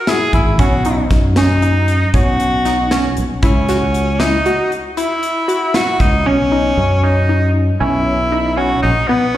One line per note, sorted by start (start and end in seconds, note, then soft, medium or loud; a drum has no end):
0.00 0.11 A#4 medium
0.07 0.41 E4 medium
0.07 0.34 G#4 medium
0.07 snare loud
0.07 closed hi-hat medium
0.33 0.59 G#1 medium
0.33 0.58 E4 medium
0.33 kick medium
0.33 closed hi-hat medium
0.59 1.05 B1 medium
0.59 0.76 C#4 medium
0.59 1.08 F#4 medium
0.59 kick medium
0.59 closed hi-hat medium
0.85 1.19 D#4 medium
0.85 closed hi-hat medium
1.11 2.03 F#2 medium
1.11 kick medium
1.11 snare soft
1.11 closed hi-hat medium
1.36 1.54 C#4 medium
1.36 2.10 D#4 medium
1.36 snare medium
1.36 closed hi-hat medium
1.62 1.96 D#4 medium
1.62 closed hi-hat soft
1.88 closed hi-hat soft
2.14 3.06 B1 medium
2.14 2.48 C#4 medium
2.14 3.14 F#4 medium
2.14 kick medium
2.14 closed hi-hat medium
2.40 closed hi-hat medium
2.65 2.82 D#4 medium
2.65 snare soft
2.65 closed hi-hat medium
2.91 3.25 C#4 medium
2.91 snare medium
2.91 closed hi-hat medium
3.17 3.29 B1 medium
3.17 closed hi-hat medium
3.43 4.35 C#2 medium
3.43 4.21 C#4 medium
3.43 3.59 E4 medium
3.43 kick medium
3.43 closed hi-hat medium
3.69 4.02 F#4 medium
3.69 snare soft
3.69 closed hi-hat medium
3.94 closed hi-hat soft
4.20 4.72 D#4 medium
4.20 4.37 E4 medium
4.20 snare medium
4.20 closed hi-hat medium
4.46 4.79 F#4 medium
4.46 closed hi-hat soft
4.72 closed hi-hat soft
4.97 5.31 E4 medium
4.97 5.77 E4 medium
4.97 closed hi-hat medium
5.23 closed hi-hat medium
5.48 5.65 F#4 medium
5.48 closed hi-hat medium
5.74 6.08 E4 medium
5.74 6.02 F#4 medium
5.74 snare medium
5.74 closed hi-hat medium
6.00 6.26 C#2 medium
6.00 6.28 D#4 medium
6.00 kick medium
6.00 closed hi-hat medium
6.26 6.72 B1 medium
6.26 6.43 C#4 loud
6.26 7.05 C#4 medium
6.52 6.85 D#4 medium
6.78 7.70 F#2 medium
7.03 7.20 C#4 medium
7.03 7.55 D#4 medium
7.29 7.63 D#4 medium
7.80 8.73 B1 medium
7.80 8.14 C#4 medium
7.80 8.59 E4 medium
8.32 8.49 D#4 medium
8.57 8.91 C#4 medium
8.57 8.82 F#4 medium
8.82 8.95 A#1 medium
8.82 9.09 D#4 loud
9.08 9.37 B3 medium
9.08 9.26 B3 loud